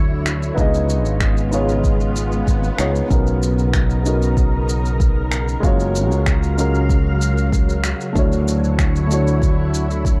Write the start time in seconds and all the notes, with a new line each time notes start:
Already playing: D2 D3 F#3 A3 D4 E4 F#4 C#5
0.26 finger snap, shaker
0.43 shaker
0.55 C#2 C#3 G#3 B3 D#4 F4, kick, shaker
0.59 G#4 D#5
0.74 shaker
0.90 shaker
1.05 G#1, shaker
1.20 finger snap, kick, shaker
1.38 shaker
1.51 B3 D#4 F4 G#4 C#5, shaker
1.69 shaker
1.84 kick, swell, shaker
2.00 shaker
2.16 shaker
2.32 shaker
2.47 G#1, kick, shaker
2.64 shaker
2.77 C#2 B3 D#4 F4 G#4 C#5, finger snap, shaker
2.96 shaker
3.07 B1 C#3 B3 C#4 D#4 A#4, kick, shaker
3.12 F#4 A#4
3.27 shaker
3.43 shaker
3.59 shaker
3.73 finger snap, kick, shaker
3.90 shaker
4.02 B3 C#4 D#4, shaker
4.07 F#4 A#4
4.22 shaker
4.37 kick, shaker
4.69 shaker
4.85 shaker
5.00 kick, shaker
5.32 finger snap, shaker
5.48 shaker
5.60 F#1 C#3 F#3 G#3 C#4 F4 F5, kick, shaker
5.65 F#4 C#5
5.80 shaker
5.96 shaker
6.11 C#2, shaker
6.26 finger snap, kick, shaker
6.43 shaker
6.57 G#3 C#4 F4 F#4 A#4, shaker
6.75 shaker
6.89 kick, shaker
7.22 shaker
7.38 shaker
7.52 kick, shaker
7.70 shaker
7.84 finger snap, shaker
8.01 shaker
8.13 D2 D3 A3 D4 E4 C#5, kick, shaker
8.17 F#4 C#5
8.32 shaker
8.48 shaker
8.64 shaker
8.79 finger snap, kick, shaker
8.96 shaker
9.07 A3 D4 E4, shaker
9.12 F#4 C#5
9.27 shaker
9.42 kick, shaker
9.74 shaker
9.91 shaker
10.05 kick, shaker